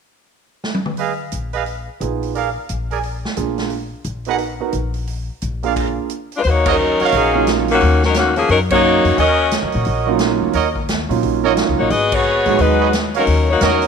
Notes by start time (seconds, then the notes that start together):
0.64 snare
0.75 high tom
0.86 mid tom
0.97 G#4 B4 D#5 F5, open hi-hat
1.32 A#1, closed hi-hat
1.53 G#4 B4 D#5 F5, open hi-hat
1.66 open hi-hat
2.00 A#1 B3 D#4 F4 G#4, closed hi-hat
2.23 open hi-hat
2.35 G#4 A#4 D5 F5, open hi-hat
2.69 A#1, closed hi-hat
2.90 G#4 A#4 D5 G#5, open hi-hat
3.03 open hi-hat
3.25 snare
3.36 A#1 A#3 D4 F4 G#4, closed hi-hat
3.58 snare, open hi-hat
3.70 open hi-hat
4.04 A#1, closed hi-hat
4.25 B3 D#4 F#4 G#4 A#4 B4 D#5 F#5, open hi-hat
4.38 open hi-hat
4.60 B3 D#4 F#4 A#4
4.73 A#1, closed hi-hat
4.94 open hi-hat
5.07 open hi-hat
5.42 A#1, closed hi-hat
5.63 A#3 D4 F4 G#4 A#4 D5 F5, open hi-hat
5.76 kick, open hi-hat, crash
6.10 closed hi-hat
6.32 G#3 D4, open hi-hat
6.36 F4 B4
6.42 D#2 C5, open hi-hat
6.47 A#3 D#4 F#4 C#5
6.66 F#4 A#4 C#5 D#5, kick, crash
6.70 F#3 C#4 D#4 A#4
7.00 F#4 A#4 C#5 F5, muted upright bass stroke, open hi-hat
7.12 A#1 F#3 C#4 D#4 G#4, open hi-hat
7.34 F#3 A#3 C#4 D#4 F4
7.47 snare, closed hi-hat
7.68 D#3 A#3 C#4 F#4, open hi-hat
7.81 D#2, open hi-hat
8.03 F#3 C#4 D#4 A#4, snare
8.14 D#3 A#3 C#4 F#4, snare, closed hi-hat
8.36 F3 A#3 C#4 G#4, open hi-hat
8.48 F#2 F#3 C#4 D#4 A#4, open hi-hat
8.70 F#3 A#3 C#4 D#4 F#4 A#4 C#5 D#5 F5, kick, crash
9.04 F2, open hi-hat
9.18 D#2 C#4 F#4 A#4 C#5 D#5, open hi-hat
9.51 snare, closed hi-hat
9.63 F#2
9.72 A#2, open hi-hat
9.85 A#1, open hi-hat
10.06 F#3 A#3 C#4 D#4 F4
10.19 snare, closed hi-hat
10.42 D2
10.53 D#2 F#4 A#4 C#5 D#5, open hi-hat
10.75 kick
10.89 snare, closed hi-hat
11.09 A#2 F#3 A#3 C#4 D#4 F4, open hi-hat
11.23 A#1, open hi-hat
11.43 F#3 A#3 C#4 D#4 F4 F#4 A#4 C#5 D#5
11.57 snare, closed hi-hat
11.68 C#2
11.78 A#1 A#3 D#4 F#4 C#5
11.90 G#1 B3 F#4 G#4 D#5, open hi-hat
12.11 B3 F#4 G#4 C#5, kick, crash
12.46 A1 F#3 G#3 B3 D#4 F#4, open hi-hat
12.59 D#2 G#3 D#4 F#4 B4, open hi-hat
12.80 F#4 G#4 B4 D#5
12.93 snare, closed hi-hat
13.13 F#3 C#4 D#4 F#4 A#4 C#5 F5, open hi-hat
13.27 D#2, open hi-hat
13.49 A#3 D#4 F#4 C#5
13.61 E2 F#3 C#4 D#4 F#4 A#4 C#5 D#5, snare, closed hi-hat
13.82 open hi-hat